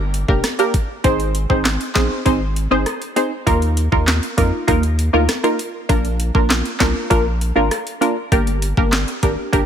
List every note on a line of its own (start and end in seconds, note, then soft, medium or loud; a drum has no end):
0.00 0.25 G1 loud
0.00 downlifter medium
0.14 closed hi-hat medium
0.28 0.43 F1 medium
0.28 0.43 A#3 medium
0.28 0.43 D4 medium
0.28 0.43 G4 medium
0.28 0.44 A#4 medium
0.28 kick medium
0.44 cross-stick medium
0.44 snare medium
0.44 closed hi-hat medium
0.59 0.74 A#3 medium
0.59 0.74 D4 medium
0.59 0.74 G4 medium
0.59 0.74 A#4 medium
0.59 closed hi-hat medium
0.74 kick medium
0.74 closed hi-hat medium
1.04 1.46 G#1 loud
1.04 1.46 C4 medium
1.04 1.46 D#4 medium
1.04 1.46 G#4 medium
1.04 1.46 C5 loud
1.04 kick loud
1.04 closed hi-hat medium
1.20 closed hi-hat medium
1.35 closed hi-hat medium
1.50 1.78 G#1 medium
1.50 1.92 C4 medium
1.50 1.92 D#4 medium
1.50 1.92 G#4 medium
1.50 1.92 C5 medium
1.50 kick medium
1.65 cross-stick medium
1.65 snare loud
1.65 clap medium
1.65 closed hi-hat medium
1.81 closed hi-hat soft
1.95 2.09 A#1 medium
1.95 2.23 C4 medium
1.95 2.23 D#4 medium
1.95 2.23 G#4 medium
1.95 2.23 C5 medium
1.95 kick medium
1.95 snare loud
1.95 clap medium
1.95 closed hi-hat medium
2.25 2.68 G#1 loud
2.25 2.40 C4 loud
2.25 2.40 D#4 medium
2.25 2.41 G#4 medium
2.25 2.41 C5 loud
2.25 kick medium
2.25 closed hi-hat medium
2.56 closed hi-hat medium
2.71 2.85 G1 medium
2.71 2.86 C4 medium
2.71 2.86 D#4 medium
2.71 2.86 G#4 medium
2.71 2.86 C5 medium
2.86 cross-stick medium
2.86 closed hi-hat medium
3.02 closed hi-hat medium
3.16 3.31 C4 medium
3.16 3.31 D#4 medium
3.16 3.31 G#4 medium
3.16 3.31 C5 medium
3.16 closed hi-hat medium
3.46 3.89 D#2 loud
3.46 3.88 A#3 medium
3.46 3.89 D#4 medium
3.46 3.89 F4 medium
3.46 3.89 A#4 loud
3.46 kick loud
3.46 closed hi-hat medium
3.62 closed hi-hat medium
3.77 closed hi-hat medium
3.92 4.20 D#2 medium
3.92 4.34 A#3 medium
3.92 4.34 D#4 medium
3.92 4.34 F4 medium
3.92 4.34 A#4 medium
3.92 kick medium
4.07 snare loud
4.07 clap medium
4.07 closed hi-hat medium
4.23 closed hi-hat soft
4.37 4.52 F2 medium
4.37 4.65 A#3 medium
4.37 4.66 D#4 medium
4.37 4.66 F4 medium
4.37 4.66 A#4 medium
4.37 kick loud
4.37 closed hi-hat medium
4.67 5.10 D#2 medium
4.67 4.83 A#3 medium
4.67 4.83 D#4 medium
4.67 4.83 F4 medium
4.67 4.83 A#4 loud
4.67 kick medium
4.67 closed hi-hat medium
4.83 closed hi-hat medium
4.99 closed hi-hat medium
5.13 5.28 D2 medium
5.13 5.28 A#3 medium
5.13 5.28 D#4 medium
5.13 5.28 F4 medium
5.13 5.28 A#4 medium
5.29 cross-stick medium
5.29 snare medium
5.29 closed hi-hat medium
5.44 5.59 A#3 medium
5.44 5.59 D#4 medium
5.44 5.59 F4 medium
5.44 5.59 A#4 medium
5.44 closed hi-hat medium
5.59 closed hi-hat medium
5.89 6.31 A#1 loud
5.89 6.31 A#3 medium
5.89 6.31 D4 medium
5.89 6.31 F4 medium
5.89 6.31 A#4 loud
5.89 kick loud
5.89 closed hi-hat medium
6.05 closed hi-hat soft
6.20 closed hi-hat medium
6.34 6.63 A#1 medium
6.34 6.76 A#3 medium
6.34 6.77 D4 medium
6.34 6.77 F4 medium
6.34 6.77 A#4 medium
6.34 kick medium
6.50 cross-stick medium
6.50 snare loud
6.50 clap medium
6.50 closed hi-hat medium
6.65 closed hi-hat soft
6.80 6.94 C2 medium
6.80 7.08 A#3 medium
6.80 7.08 D4 medium
6.80 7.08 F4 medium
6.80 7.08 A#4 medium
6.80 kick medium
6.80 snare loud
6.80 clap medium
6.80 closed hi-hat medium
7.10 7.52 A#1 medium
7.10 7.25 A#3 medium
7.10 7.25 D4 medium
7.10 7.25 F4 medium
7.10 7.25 A#4 loud
7.10 kick medium
7.10 closed hi-hat medium
7.41 closed hi-hat medium
7.55 7.70 G#1 medium
7.55 7.71 A#3 medium
7.55 7.71 D4 medium
7.55 7.71 F4 medium
7.55 7.71 A#4 medium
7.71 cross-stick medium
7.71 closed hi-hat medium
7.87 closed hi-hat medium
8.01 8.16 A#3 medium
8.01 8.16 D4 medium
8.01 8.16 F4 medium
8.01 8.16 A#4 medium
8.01 closed hi-hat medium
8.32 8.74 G1 loud
8.32 8.74 A#3 medium
8.32 8.74 D4 medium
8.32 8.74 G4 medium
8.32 8.74 A#4 loud
8.32 kick loud
8.32 closed hi-hat medium
8.47 closed hi-hat medium
8.62 closed hi-hat medium
8.77 9.05 G1 loud
8.77 9.19 A#3 medium
8.77 9.19 D4 medium
8.77 9.19 G4 medium
8.77 9.19 A#4 medium
8.77 kick medium
8.92 cross-stick medium
8.92 snare loud
8.92 clap medium
8.92 closed hi-hat medium
9.08 closed hi-hat soft
9.23 9.37 G#1 medium
9.23 9.51 A#3 medium
9.23 9.51 D4 medium
9.23 9.51 G4 medium
9.23 9.51 A#4 medium
9.23 kick medium
9.23 closed hi-hat medium
9.53 9.66 G1 loud
9.53 9.66 A#3 loud
9.53 9.66 D4 medium
9.53 9.66 G4 medium
9.53 9.66 A#4 loud
9.53 kick medium
9.53 closed hi-hat medium